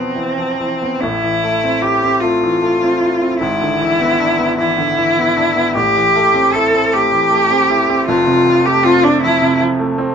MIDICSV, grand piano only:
0, 0, Header, 1, 2, 480
1, 0, Start_track
1, 0, Key_signature, 0, "minor"
1, 0, Tempo, 879765
1, 554, Time_signature, 6, 3, 24, 8
1, 554, Tempo, 794702
1, 2474, Tempo, 778210
1, 4394, Tempo, 758534
1, 6192, End_track
2, 0, Start_track
2, 0, Title_t, "Grand piano"
2, 0, Program_c, 0, 0
2, 0, Control_c, 0, 64, 127
2, 0, Note_on_c, 0, 40, 53
2, 0, Note_on_c, 0, 47, 41
2, 0, Note_on_c, 0, 52, 39
2, 0, Note_on_c, 0, 53, 35
2, 0, Note_on_c, 0, 59, 44
2, 86, Note_off_c, 0, 52, 0
2, 86, Note_on_c, 0, 52, 34
2, 153, Note_off_c, 0, 59, 0
2, 206, Note_off_c, 0, 53, 0
2, 206, Note_on_c, 0, 53, 32
2, 278, Note_off_c, 0, 52, 0
2, 326, Note_off_c, 0, 53, 0
2, 332, Note_on_c, 0, 52, 34
2, 449, Note_on_c, 0, 59, 36
2, 515, Note_off_c, 0, 52, 0
2, 534, Note_off_c, 0, 40, 0
2, 559, Note_off_c, 0, 59, 0
2, 560, Note_on_c, 0, 33, 54
2, 565, Control_c, 0, 64, 0
2, 565, Note_on_c, 0, 45, 54
2, 566, Note_off_c, 0, 47, 0
2, 671, Control_c, 0, 64, 127
2, 683, Note_on_c, 0, 52, 43
2, 809, Note_on_c, 0, 57, 42
2, 871, Note_off_c, 0, 52, 0
2, 930, Note_on_c, 0, 60, 47
2, 994, Note_off_c, 0, 57, 0
2, 1044, Note_on_c, 0, 64, 53
2, 1115, Note_off_c, 0, 60, 0
2, 1167, Note_on_c, 0, 60, 50
2, 1232, Note_off_c, 0, 64, 0
2, 1288, Note_on_c, 0, 57, 48
2, 1354, Note_off_c, 0, 60, 0
2, 1411, Note_on_c, 0, 52, 48
2, 1474, Note_off_c, 0, 57, 0
2, 1523, Note_on_c, 0, 57, 45
2, 1594, Note_off_c, 0, 52, 0
2, 1650, Note_on_c, 0, 60, 46
2, 1709, Note_off_c, 0, 57, 0
2, 1758, Note_on_c, 0, 64, 44
2, 1832, Note_off_c, 0, 60, 0
2, 1883, Note_on_c, 0, 60, 44
2, 1947, Note_off_c, 0, 64, 0
2, 1972, Note_off_c, 0, 33, 0
2, 1974, Note_off_c, 0, 45, 0
2, 1997, Note_on_c, 0, 32, 59
2, 1998, Note_off_c, 0, 60, 0
2, 2003, Note_on_c, 0, 44, 60
2, 2005, Control_c, 0, 64, 0
2, 2093, Control_c, 0, 64, 127
2, 2122, Note_on_c, 0, 50, 53
2, 2237, Note_on_c, 0, 52, 51
2, 2312, Note_off_c, 0, 50, 0
2, 2356, Note_on_c, 0, 59, 50
2, 2428, Note_off_c, 0, 52, 0
2, 2477, Note_on_c, 0, 62, 53
2, 2547, Note_off_c, 0, 59, 0
2, 2594, Note_on_c, 0, 59, 49
2, 2668, Note_off_c, 0, 62, 0
2, 2714, Note_on_c, 0, 52, 55
2, 2786, Note_off_c, 0, 59, 0
2, 2836, Note_on_c, 0, 50, 45
2, 2907, Note_off_c, 0, 52, 0
2, 2958, Note_on_c, 0, 52, 47
2, 3028, Note_off_c, 0, 50, 0
2, 3082, Note_on_c, 0, 59, 49
2, 3150, Note_off_c, 0, 52, 0
2, 3199, Note_on_c, 0, 62, 50
2, 3273, Note_off_c, 0, 59, 0
2, 3318, Note_on_c, 0, 59, 46
2, 3391, Note_off_c, 0, 62, 0
2, 3415, Note_off_c, 0, 32, 0
2, 3418, Note_off_c, 0, 44, 0
2, 3431, Note_on_c, 0, 33, 58
2, 3438, Note_off_c, 0, 59, 0
2, 3438, Note_on_c, 0, 45, 58
2, 3449, Control_c, 0, 64, 0
2, 3528, Control_c, 0, 64, 127
2, 3561, Note_on_c, 0, 52, 51
2, 3684, Note_on_c, 0, 57, 52
2, 3751, Note_off_c, 0, 52, 0
2, 3800, Note_on_c, 0, 60, 52
2, 3872, Note_off_c, 0, 57, 0
2, 3924, Note_on_c, 0, 64, 57
2, 3990, Note_off_c, 0, 60, 0
2, 4041, Note_on_c, 0, 60, 51
2, 4112, Note_off_c, 0, 64, 0
2, 4159, Note_on_c, 0, 57, 51
2, 4231, Note_off_c, 0, 60, 0
2, 4279, Note_on_c, 0, 52, 46
2, 4349, Note_off_c, 0, 57, 0
2, 4395, Note_on_c, 0, 57, 58
2, 4470, Note_off_c, 0, 52, 0
2, 4521, Note_on_c, 0, 60, 52
2, 4589, Note_off_c, 0, 57, 0
2, 4643, Note_on_c, 0, 64, 51
2, 4712, Note_off_c, 0, 60, 0
2, 4767, Note_on_c, 0, 60, 59
2, 4833, Note_off_c, 0, 64, 0
2, 4849, Note_off_c, 0, 33, 0
2, 4852, Note_off_c, 0, 45, 0
2, 4882, Note_off_c, 0, 60, 0
2, 4882, Note_on_c, 0, 29, 67
2, 4889, Control_c, 0, 64, 0
2, 4889, Note_on_c, 0, 41, 66
2, 4969, Control_c, 0, 64, 127
2, 5005, Note_on_c, 0, 48, 51
2, 5125, Note_on_c, 0, 53, 53
2, 5194, Note_off_c, 0, 48, 0
2, 5240, Note_on_c, 0, 57, 54
2, 5315, Note_off_c, 0, 53, 0
2, 5366, Note_on_c, 0, 60, 58
2, 5434, Note_off_c, 0, 57, 0
2, 5488, Note_on_c, 0, 57, 53
2, 5557, Note_off_c, 0, 60, 0
2, 5615, Note_on_c, 0, 53, 59
2, 5678, Note_off_c, 0, 57, 0
2, 5731, Note_on_c, 0, 48, 55
2, 5800, Note_off_c, 0, 53, 0
2, 5848, Note_on_c, 0, 53, 60
2, 5916, Note_off_c, 0, 48, 0
2, 5965, Note_on_c, 0, 57, 54
2, 6033, Note_off_c, 0, 53, 0
2, 6087, Note_on_c, 0, 60, 59
2, 6151, Note_off_c, 0, 57, 0
2, 6192, Note_off_c, 0, 29, 0
2, 6192, Note_off_c, 0, 41, 0
2, 6192, Note_off_c, 0, 60, 0
2, 6192, End_track
0, 0, End_of_file